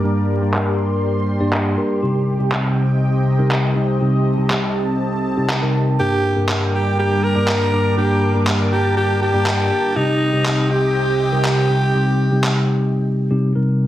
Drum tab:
CP |--x---x-|--x---x-|--x---x-|--x---x-|

CP |--x---x-|--x---x-|--x-----|